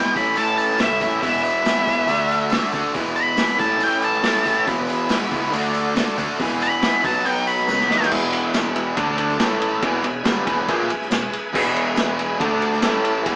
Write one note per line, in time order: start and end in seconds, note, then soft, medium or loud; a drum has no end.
0.00 0.14 E2 medium
0.00 0.14 B2 medium
0.00 0.14 E3 medium
0.00 0.14 G#3 medium
0.00 0.15 B3 loud
0.00 0.15 E4 medium
0.00 0.15 G5 loud
0.14 0.32 A1 medium
0.14 0.34 A2 medium
0.14 0.35 E3 medium
0.14 0.35 A3 medium
0.14 0.36 C#4 medium
0.14 0.36 E4 medium
0.14 0.37 B5 medium
0.14 kick loud
0.14 open hi-hat medium
0.14 tambourine soft
0.25 tambourine soft
0.35 0.77 A2 medium
0.35 0.78 E3 loud
0.35 0.79 A3 medium
0.35 0.79 C#4 loud
0.35 0.79 E4 loud
0.35 0.57 A5 medium
0.35 open hi-hat medium
0.35 tambourine medium
0.57 0.79 A5 medium
0.57 open hi-hat medium
0.57 tambourine medium
0.70 snare soft
0.78 0.98 C#2 medium
0.78 0.98 A2 medium
0.78 0.99 E3 medium
0.78 0.99 A3 medium
0.78 1.00 C#4 medium
0.78 1.01 E4 medium
0.78 1.01 E5 medium
0.78 snare loud
0.78 open hi-hat medium
0.78 tambourine medium
0.91 snare soft
0.99 1.21 E2 medium
0.99 1.21 A2 medium
0.99 1.20 E3 medium
0.99 1.21 A3 medium
0.99 1.21 C#4 medium
0.99 1.22 E4 medium
0.99 1.20 E5 medium
0.99 kick medium
0.99 open hi-hat medium
0.99 tambourine medium
1.11 tambourine soft
1.20 1.71 E1 loud
1.20 1.64 E2 medium
1.20 1.64 B2 medium
1.20 1.65 E3 medium
1.20 1.66 G#3 medium
1.20 2.07 B3 medium
1.20 1.66 B3 medium
1.20 2.07 E4 medium
1.20 1.67 E4 medium
1.20 2.08 G#4 medium
1.20 2.08 B4 medium
1.20 1.42 E5 medium
1.20 kick loud
1.20 open hi-hat medium
1.34 tambourine soft
1.43 2.69 E5 loud
1.43 open hi-hat medium
1.43 tambourine medium
1.65 1.85 E2 medium
1.65 1.86 B2 medium
1.65 1.86 E3 medium
1.65 1.87 G#3 medium
1.65 1.87 B3 medium
1.65 1.87 E4 medium
1.65 snare loud
1.65 open hi-hat medium
1.65 tambourine medium
1.86 2.03 E1 medium
1.86 2.07 E2 medium
1.86 2.07 B2 medium
1.86 2.07 E3 medium
1.86 2.08 G#3 medium
1.86 2.08 B3 medium
1.86 2.08 E4 medium
1.86 kick medium
1.86 open hi-hat medium
1.86 tambourine soft
2.07 2.56 D2 loud
2.07 2.49 D3 medium
2.07 2.50 A3 medium
2.07 2.50 D4 loud
2.07 2.94 D4 medium
2.07 2.50 F#4 medium
2.07 2.94 F#4 medium
2.07 2.94 A4 medium
2.07 2.94 D5 medium
2.07 open hi-hat medium
2.07 tambourine medium
2.18 tambourine soft
2.29 open hi-hat medium
2.29 tambourine medium
2.50 2.71 D3 medium
2.50 2.71 A3 medium
2.50 2.71 D4 medium
2.50 2.72 F#4 medium
2.50 snare loud
2.50 open hi-hat medium
2.50 tambourine loud
2.60 snare soft
2.60 tambourine soft
2.71 2.81 D2 medium
2.71 2.93 D3 medium
2.71 2.93 A3 medium
2.71 2.93 D4 medium
2.71 2.93 F#4 loud
2.71 kick medium
2.71 open hi-hat medium
2.71 tambourine medium
2.83 tambourine soft
2.93 3.36 E2 medium
2.93 3.43 E2 medium
2.93 3.36 B2 medium
2.93 3.37 E3 medium
2.93 3.37 G#3 medium
2.93 3.38 B3 medium
2.93 3.56 E4 medium
2.93 3.38 E4 medium
2.93 3.58 G#4 medium
2.93 3.58 B4 medium
2.93 3.55 E5 medium
2.93 kick loud
2.93 open hi-hat medium
3.06 tambourine soft
3.15 3.58 B5 loud
3.15 open hi-hat medium
3.15 tambourine medium
3.37 3.58 E2 medium
3.37 3.58 B2 medium
3.37 3.58 E3 medium
3.37 3.58 G#3 medium
3.37 3.59 B3 medium
3.37 3.59 E4 medium
3.37 snare loud
3.37 open hi-hat medium
3.37 tambourine loud
3.57 3.75 A1 medium
3.57 3.80 A2 medium
3.57 3.80 E3 medium
3.57 3.81 A3 medium
3.57 3.81 C#4 medium
3.57 4.65 E4 medium
3.57 4.65 A4 medium
3.57 4.65 C#5 medium
3.57 4.64 E5 medium
3.57 3.80 A5 loud
3.57 kick loud
3.57 open hi-hat medium
3.57 tambourine soft
3.62 3.82 E4 loud
3.80 4.22 A2 loud
3.80 4.23 E3 medium
3.80 4.24 A3 medium
3.80 4.24 C#4 loud
3.80 4.24 E4 medium
3.80 4.03 G5 medium
3.80 open hi-hat medium
3.80 tambourine medium
3.92 tambourine soft
4.02 4.66 A5 loud
4.02 open hi-hat medium
4.02 tambourine medium
4.12 snare soft
4.23 4.43 A2 medium
4.23 4.44 E3 medium
4.23 4.45 A3 medium
4.23 4.46 C#4 medium
4.23 4.46 E4 loud
4.23 snare loud
4.23 open hi-hat medium
4.23 tambourine loud
4.35 snare soft
4.44 4.62 A1 medium
4.44 4.65 A2 medium
4.44 4.66 E3 medium
4.44 4.66 A3 medium
4.44 4.66 C#4 medium
4.44 4.66 E4 loud
4.44 kick medium
4.44 open hi-hat medium
4.44 tambourine medium
4.66 5.16 E1 loud
4.66 5.09 E2 medium
4.66 5.10 B2 medium
4.66 5.10 E3 medium
4.66 5.11 G#3 medium
4.66 5.11 B3 medium
4.66 5.52 E4 medium
4.66 5.12 E4 medium
4.66 5.52 G#4 medium
4.66 5.53 B4 medium
4.66 5.52 E5 medium
4.66 kick loud
4.66 open hi-hat medium
4.76 tambourine soft
4.87 open hi-hat medium
4.87 tambourine medium
5.09 5.31 E2 medium
5.09 5.32 B2 medium
5.09 5.33 E3 medium
5.09 5.33 G#3 medium
5.09 5.34 B3 medium
5.09 snare loud
5.09 open hi-hat medium
5.09 tambourine loud
5.13 5.34 E4 loud
5.31 5.48 C#2 medium
5.31 5.52 E2 medium
5.31 5.52 B2 medium
5.31 5.53 E3 medium
5.31 5.53 G#3 medium
5.31 kick medium
5.31 open hi-hat medium
5.31 tambourine soft
5.35 5.53 B3 medium
5.35 5.53 E4 medium
5.52 6.01 D2 loud
5.52 5.95 D3 medium
5.52 5.96 A3 medium
5.52 6.38 D4 medium
5.52 5.96 D4 loud
5.52 6.38 F#4 medium
5.52 5.97 F#4 loud
5.52 6.38 A4 medium
5.52 6.38 D5 medium
5.52 open hi-hat medium
5.52 tambourine medium
5.64 tambourine soft
5.74 open hi-hat medium
5.74 tambourine medium
5.96 6.16 D3 medium
5.96 6.17 A3 medium
5.96 6.17 D4 medium
5.96 6.18 F#4 medium
5.96 snare loud
5.96 open hi-hat medium
5.96 tambourine medium
6.07 tambourine soft
6.17 6.26 D2 loud
6.17 6.37 D3 loud
6.17 6.38 A3 loud
6.17 6.38 D4 loud
6.17 6.38 F#4 loud
6.17 kick medium
6.17 open hi-hat medium
6.17 tambourine medium
6.29 tambourine soft
6.39 6.81 E2 medium
6.39 6.88 E2 medium
6.39 6.82 B2 medium
6.39 6.82 E3 medium
6.39 6.83 G#3 medium
6.39 6.83 B3 medium
6.39 7.04 E4 medium
6.39 6.84 G#4 loud
6.39 7.04 G#4 medium
6.39 7.04 E5 medium
6.39 kick loud
6.39 open hi-hat medium
6.43 7.02 B4 medium
6.51 tambourine soft
6.60 7.03 B5 loud
6.60 open hi-hat medium
6.60 tambourine medium
6.73 tambourine soft
6.82 7.02 E2 medium
6.82 7.01 B2 medium
6.82 7.03 E3 medium
6.82 7.03 G#3 medium
6.82 7.03 B3 medium
6.82 7.03 G#4 medium
6.82 snare loud
6.82 open hi-hat medium
6.82 tambourine medium
6.93 tambourine soft
7.02 7.20 B1 medium
7.02 7.23 B2 medium
7.02 7.24 F#3 medium
7.02 7.24 B3 medium
7.02 8.10 D#4 medium
7.02 7.24 D#4 medium
7.02 8.10 F#4 medium
7.02 7.25 F#4 loud
7.02 8.10 B4 medium
7.02 8.10 D#5 medium
7.02 7.25 A5 medium
7.02 kick loud
7.02 open hi-hat medium
7.02 tambourine soft
7.15 tambourine soft
7.24 7.66 B2 medium
7.24 7.67 F#3 medium
7.24 7.67 B3 loud
7.24 7.67 D#4 loud
7.24 7.68 F#4 loud
7.24 7.46 G5 medium
7.24 open hi-hat medium
7.24 tambourine medium
7.37 tambourine soft
7.47 8.09 B5 medium
7.47 open hi-hat medium
7.47 tambourine medium
7.58 snare soft
7.58 tambourine soft
7.67 7.87 C#2 medium
7.67 7.88 B2 medium
7.67 7.89 F#3 medium
7.67 7.89 B3 medium
7.67 7.90 D#4 medium
7.67 7.90 F#4 medium
7.67 high tom medium
7.67 tambourine loud
7.79 snare medium
7.79 tambourine soft
7.89 8.09 D#2 medium
7.89 8.09 B2 loud
7.89 8.10 F#3 loud
7.89 8.10 B3 loud
7.89 8.10 D#4 loud
7.89 8.10 F#4 loud
7.89 snare medium
8.01 snare medium
8.01 tambourine soft
8.10 8.93 E1 medium
8.10 8.96 E2 medium
8.10 8.96 B2 medium
8.10 8.96 E3 loud
8.10 8.96 E4 medium
8.10 8.28 E4 loud
8.10 8.28 G#4 loud
8.10 8.96 G#4 medium
8.10 8.28 B4 medium
8.10 8.96 B4 medium
8.10 8.28 E5 loud
8.10 8.96 E5 medium
8.10 kick loud
8.10 crash loud
8.33 8.50 E4 medium
8.33 8.50 G#4 medium
8.33 8.50 B4 medium
8.33 8.51 E5 medium
8.33 ride medium
8.54 8.71 E4 medium
8.54 8.71 G#4 medium
8.54 8.72 B4 medium
8.54 8.72 E5 loud
8.54 snare loud
8.54 ride loud
8.54 tambourine loud
8.75 8.92 E4 medium
8.75 8.92 G#4 medium
8.75 8.93 B4 medium
8.75 8.93 E5 medium
8.75 ride medium
8.96 9.37 D2 loud
8.96 9.39 D3 medium
8.96 9.39 A3 loud
8.96 9.39 D4 loud
8.96 9.39 D4 medium
8.96 9.14 D4 loud
8.96 9.39 A4 medium
8.96 9.14 A4 loud
8.96 9.14 D5 loud
8.96 9.40 D5 medium
8.96 9.39 A5 medium
8.96 9.14 A5 loud
8.96 kick loud
8.96 ride loud
9.18 9.35 D4 medium
9.18 9.35 A4 medium
9.18 9.36 D5 medium
9.18 9.35 A5 loud
9.18 ride medium
9.29 snare soft
9.39 9.79 A1 medium
9.39 9.82 A2 medium
9.39 9.82 E3 medium
9.39 9.83 A3 loud
9.39 9.57 E4 medium
9.39 9.84 E4 medium
9.39 9.57 A4 medium
9.39 9.83 A4 medium
9.39 9.57 E5 medium
9.39 9.82 E5 medium
9.39 9.57 A5 loud
9.39 9.83 A5 medium
9.39 snare loud
9.39 ride loud
9.39 tambourine loud
9.51 snare soft
9.61 9.78 E4 loud
9.61 9.79 A4 medium
9.61 9.78 E5 medium
9.61 9.78 A5 loud
9.61 ride medium
9.82 10.02 E1 medium
9.82 10.02 E2 medium
9.82 10.03 B2 medium
9.82 10.04 E3 loud
9.82 9.99 G#4 loud
9.82 12.38 G#4 medium
9.82 10.00 B4 medium
9.82 12.38 B4 medium
9.82 10.00 E5 medium
9.82 12.38 E5 medium
9.82 10.00 G#5 loud
9.82 12.38 G#5 medium
9.82 kick loud
9.82 ride loud
10.04 10.24 E1 medium
10.04 10.21 E2 medium
10.04 10.21 B2 medium
10.04 10.22 G#4 medium
10.04 10.22 B4 medium
10.04 10.22 E5 medium
10.04 10.22 G#5 medium
10.04 ride medium
10.24 10.46 G1 loud
10.24 10.45 G2 medium
10.24 10.46 D3 loud
10.24 10.46 G3 loud
10.24 10.42 G#4 medium
10.24 10.43 B4 medium
10.24 10.43 E5 medium
10.24 10.43 G#5 medium
10.24 snare loud
10.24 ride loud
10.24 tambourine loud
10.46 10.67 E1 loud
10.46 10.67 E2 medium
10.46 10.68 B2 medium
10.46 10.68 E3 medium
10.46 10.64 G#4 medium
10.46 10.64 B4 medium
10.46 10.64 E5 medium
10.46 10.64 G#5 medium
10.46 kick loud
10.46 ride medium
10.68 10.88 A#1 medium
10.68 10.89 A#2 medium
10.68 10.89 F3 loud
10.68 10.90 A#3 loud
10.68 10.86 G#4 loud
10.68 10.86 B4 loud
10.68 10.86 E5 loud
10.68 10.86 G#5 loud
10.68 kick loud
10.68 ride loud
10.89 11.07 G#4 medium
10.89 11.07 B4 medium
10.89 11.08 E5 medium
10.89 11.08 G#5 loud
10.89 muted distorted electric guitar stroke medium
10.89 muted picked electric bass stroke soft
10.89 muted overdriven electric guitar stroke medium
10.89 ride medium
11.02 snare soft
11.10 11.30 E1 medium
11.10 11.28 E2 medium
11.10 11.28 B2 medium
11.10 11.29 G#4 medium
11.10 11.29 B4 medium
11.10 11.29 E5 medium
11.10 11.29 G#5 medium
11.10 snare loud
11.10 ride loud
11.10 tambourine loud
11.33 11.50 G#4 loud
11.33 11.50 B4 medium
11.33 11.50 E5 medium
11.33 11.50 G#5 loud
11.33 ride medium
11.53 12.36 E1 medium
11.53 12.38 E2 medium
11.53 12.39 B2 medium
11.53 12.39 E3 loud
11.53 11.72 G#4 loud
11.53 11.72 B4 loud
11.53 11.72 E5 loud
11.53 11.72 G#5 loud
11.53 kick loud
11.53 crash loud
11.74 11.92 G#4 medium
11.74 11.92 B4 medium
11.74 11.92 E5 medium
11.74 11.93 G#5 loud
11.74 ride medium
11.95 12.13 G#4 medium
11.95 12.14 B4 medium
11.95 12.14 E5 medium
11.95 12.14 G#5 loud
11.95 snare loud
11.95 ride loud
11.95 tambourine loud
12.19 12.36 G#4 medium
12.19 12.37 B4 medium
12.19 12.36 E5 medium
12.19 12.36 G#5 medium
12.19 ride medium
12.39 12.80 D2 loud
12.39 12.82 D3 loud
12.39 12.82 A3 loud
12.39 12.82 D4 loud
12.39 12.57 D4 loud
12.39 12.83 D4 medium
12.39 12.83 A4 medium
12.39 12.57 A4 loud
12.39 12.57 D5 loud
12.39 12.83 D5 medium
12.39 12.57 A5 loud
12.39 12.83 A5 medium
12.39 kick loud
12.39 ride loud
12.61 12.79 D4 medium
12.61 12.79 A4 medium
12.61 12.79 D5 medium
12.61 12.78 A5 loud
12.61 ride medium
12.73 snare soft
12.82 13.23 A1 loud
12.82 13.25 A2 medium
12.82 13.25 E3 medium
12.82 13.25 A3 medium
12.82 12.99 E4 medium
12.82 13.27 E4 medium
12.82 13.00 A4 medium
12.82 13.00 E5 medium
12.82 13.00 A5 medium
12.82 snare loud
12.82 ride loud
12.82 tambourine loud
12.86 13.27 A4 medium
12.86 13.26 E5 medium
12.86 13.27 A5 medium
13.02 13.21 E4 medium
13.02 13.20 A4 medium
13.02 13.20 E5 medium
13.02 13.20 A5 loud
13.02 ride medium
13.23 13.36 E1 medium
13.23 13.36 E2 loud
13.23 13.36 G#4 loud
13.23 13.36 B4 loud
13.23 13.36 E5 medium
13.23 13.36 G#5 loud
13.23 kick loud
13.23 ride loud
13.27 13.36 B2 medium
13.27 13.36 E3 loud
13.27 13.36 G#4 medium
13.27 13.36 B4 medium
13.27 13.36 E5 medium
13.27 13.36 G#5 medium